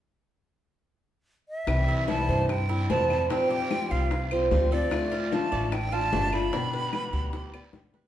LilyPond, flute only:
\new Staff \with { instrumentName = "Flute" } { \time 4/4 \key c \major \tempo 4 = 148 r2. r8 e''8~ | e''4 a''4 g''4 a''4 | g''4. f''4 r4 d''8~ | d''4 a''4 g''8 a''4 b''8~ |
b''2. r4 | }